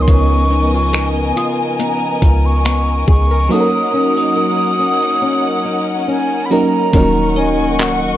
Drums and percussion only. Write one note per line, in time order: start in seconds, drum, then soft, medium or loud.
0.08 kick loud
0.08 closed hi-hat medium
0.93 finger snap loud
0.93 closed hi-hat medium
1.37 closed hi-hat medium
1.80 closed hi-hat medium
2.22 kick medium
2.22 closed hi-hat medium
2.65 finger snap loud
2.65 closed hi-hat medium
3.08 kick medium
6.93 kick loud
6.93 closed hi-hat medium
7.79 clap loud
7.79 closed hi-hat medium